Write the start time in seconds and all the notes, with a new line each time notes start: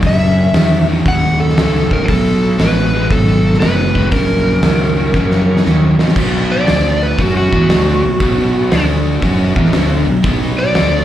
Already playing: A#3 E4 F#4 C#5
0.02 F#2 C#3, kick, open hi-hat
0.07 E5
0.53 E2 F#2 D#3, snare, open hi-hat
0.87 F#2 D#3
1.05 D#2 F#2 C#3 F#5, kick, open hi-hat
1.40 A4
1.49 snare
1.57 C#2 F#2 D#3, snare, open hi-hat
1.90 F#2 D#3 A#4, muted fingered electric bass stroke, kick
2.04 B2 A3 D#4 F#4 G#4 B4
2.08 B1 F#3 A4, kick, open hi-hat
2.58 A1 B2 G#3 B4, snare, open hi-hat
2.93 B2 G#3
3.11 G#1 B2 F#3 A4, kick, open hi-hat
3.54 snare
3.60 F#1 B2 G#3 B4, snare, open hi-hat
3.95 B2 G#3, kick, snare
4.11 A#1 F#2 C#3 A#3 E4 F#4 A#4 C#5, kick, open hi-hat
4.63 C#2 F#2 D#3, snare, open hi-hat
4.96 F#2 D#3
5.13 F#2 C#3, kick, snare
5.31 snare
5.57 snare
5.64 D#2 F#2 D#3, snare
5.99 F#2 D#3, muted fingered electric bass stroke, snare
6.08 snare
6.14 B1 B2 F#3 A3 B3 D#4 F#4 B4, kick, crash
6.52 D5
6.66 D2 D3 A3 D4 A4, snare, open hi-hat
7.03 B4
7.18 F#2 F#3 B3 C#4 D#4 F#4 A4, kick, open hi-hat
7.37 F#4
7.51 E2 E3 B3 E4, kick
7.69 D2 D3 A3 D4, snare, open hi-hat
8.04 B1 B2 F#3
8.20 B1 B2 F#3 B3, kick, open hi-hat
8.70 D2 D3 A3 D4 A4, snare, open hi-hat
9.22 F#2 F#3 C#4 F#4, kick, open hi-hat
9.27 F#3 B3 D#4 A4
9.55 E2 E3 B3 E4, kick
9.65 snare
9.73 D2 D3 A3 D4, snare, open hi-hat
10.06 B1 B2 F#3
10.23 B1 B2 F#3 B3, kick, open hi-hat
10.59 D5
10.75 D2 D3 A3 D4 A4, snare, open hi-hat